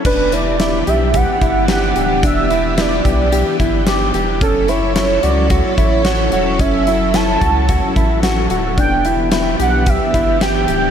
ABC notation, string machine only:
X:1
M:4/4
L:1/8
Q:1/4=110
K:Edor
V:1 name="String machine"
[E,B,DG]8- | [E,B,DG]8 | [F,CEA]8- | [F,CEA]8 |
[E,B,DG]8 |]